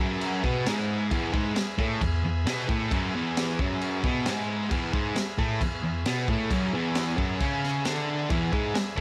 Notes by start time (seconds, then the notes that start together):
Already playing: G#4 B4 E5
0.00 F#2 F#3
0.21 crash
0.43 B2 B3, kick
0.66 G#2 G#3, snare, crash
1.11 E2 E3 G#4 B4 E5, kick, crash
1.33 G#2 G#3, kick
1.56 muted distorted electric guitar stroke, snare, crash
1.78 A2 A3, kick
2.01 E2, kick, crash
2.25 E2
2.46 B2 B3, snare, crash
2.68 A2 A3, kick
2.91 F#2 F#3, kick, crash
3.15 E2 E3
3.37 snare, crash
3.59 F#2 F#3, kick
3.81 crash
4.03 B2 B3, kick
4.25 G#2 G#3, snare, crash
4.70 E2 E3 G#4 B4 E5, kick, crash
4.93 G#2 G#3, kick
5.16 muted distorted electric guitar stroke, snare, crash
5.38 A2 A3, kick
5.61 E2, kick, crash
5.84 E2
6.06 B2 B3, snare, crash
6.28 A2 A3, kick
6.50 F#2 F#3, kick, crash
6.73 E2 E3
6.95 snare, crash
7.17 F#2 F#3, kick
7.39 C#3 C#4, kick, crash
7.64 snare
7.85 D3 D4, snare, crash
8.28 E2 E3 G#4 B4 E5, kick, crash
8.53 G#2 G#3, kick
8.75 muted distorted electric guitar stroke, snare, crash
8.96 A2